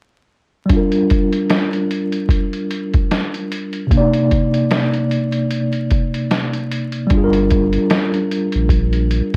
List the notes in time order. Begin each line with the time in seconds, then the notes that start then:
0.66 G3 D4, closed hi-hat
0.70 F4, kick
0.77 A#4
0.92 closed hi-hat
1.10 kick, closed hi-hat
1.33 closed hi-hat
1.50 snare, closed hi-hat
1.73 closed hi-hat
1.91 closed hi-hat
2.12 closed hi-hat
2.29 kick, closed hi-hat
2.53 closed hi-hat
2.71 closed hi-hat
2.93 kick, closed hi-hat
3.11 snare, closed hi-hat
3.34 closed hi-hat
3.51 closed hi-hat
3.73 closed hi-hat
3.87 C3 A#3
3.91 D4, kick, closed hi-hat
3.97 D#4 D5
4.13 closed hi-hat
4.31 kick, closed hi-hat
4.54 closed hi-hat
4.71 snare, closed hi-hat
4.94 closed hi-hat
5.11 closed hi-hat
5.33 closed hi-hat
5.51 closed hi-hat
5.73 closed hi-hat
5.91 kick, closed hi-hat
6.14 closed hi-hat
6.31 snare, closed hi-hat
6.53 closed hi-hat
6.71 closed hi-hat
6.92 closed hi-hat
7.07 G1 G3 D4, kick, closed hi-hat
7.14 F4 G#4
7.24 A#4
7.33 closed hi-hat
7.51 kick, closed hi-hat
7.73 closed hi-hat
7.90 snare, closed hi-hat
8.14 closed hi-hat
8.31 closed hi-hat
8.52 A#1, closed hi-hat
8.69 kick, closed hi-hat
8.93 closed hi-hat
9.11 closed hi-hat